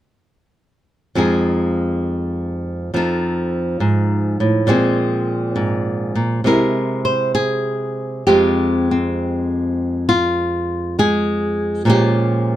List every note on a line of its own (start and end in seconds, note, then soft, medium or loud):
1.15 2.92 F2 medium
1.15 2.91 F3 soft
1.15 3.00 G#3 soft
1.15 2.92 D#4 soft
1.15 2.96 G#4 soft
2.94 3.80 F2 medium
2.94 4.64 F3 soft
2.94 4.65 D#4 soft
2.94 4.65 A4 medium
3.80 4.39 G#2 medium
4.40 4.68 A2 soft
4.67 6.14 A#2 medium
4.67 6.40 F3 medium
4.67 6.44 G#3 soft
4.67 6.44 C4 medium
4.67 6.41 G#4 medium
5.56 6.16 G#2 medium
6.15 6.43 A#2 medium
6.44 8.23 C3 medium
6.44 8.27 G#3 soft
6.44 8.24 E4 medium
6.44 7.04 A#4 medium
7.05 7.34 C5 medium
7.35 8.27 G#4 medium
8.27 11.87 F2 medium
8.27 10.97 G#3 soft
8.27 8.90 C4 soft
8.27 10.08 F4 soft
8.27 10.97 G4 medium
8.91 11.84 C4 soft
10.09 10.98 F4 medium
10.99 11.83 G#3 medium
10.99 11.87 G#4 medium
11.85 12.56 A#2 medium
11.85 12.56 F3 soft
11.85 12.56 G#3 soft
11.85 12.56 C#4 soft
11.90 12.56 G4 medium